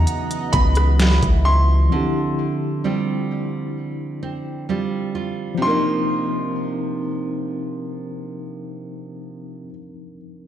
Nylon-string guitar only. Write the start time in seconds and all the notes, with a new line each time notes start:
Already playing: C#3 F#3 B3 E4
0.54 B3
1.00 F#3 B3 E4
1.46 E4
1.92 D3
2.84 G3 C4 F4
4.23 C4
4.69 G3 C4 F4
5.15 F4
5.57 C3
5.62 F3
5.66 A#3 D#4